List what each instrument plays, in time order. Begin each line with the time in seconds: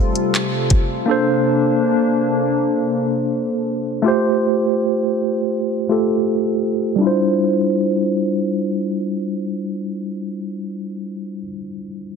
Already playing: analog synth pad C3 G3 F4 A4, tine electric piano A3 F4 G4 C5
0.15 closed hi-hat
0.35 clap, closed hi-hat
0.70 kick, closed hi-hat
1.06 tine electric piano A#3 D4 A4, analog synth pad A#3 D4
1.11 tine electric piano C5
4.02 tine electric piano A3 F4 G4
4.08 tine electric piano C5
5.89 tine electric piano A3 F4 G4 A4
6.96 tine electric piano G3 D4
7.01 tine electric piano E4 F4
7.07 tine electric piano C5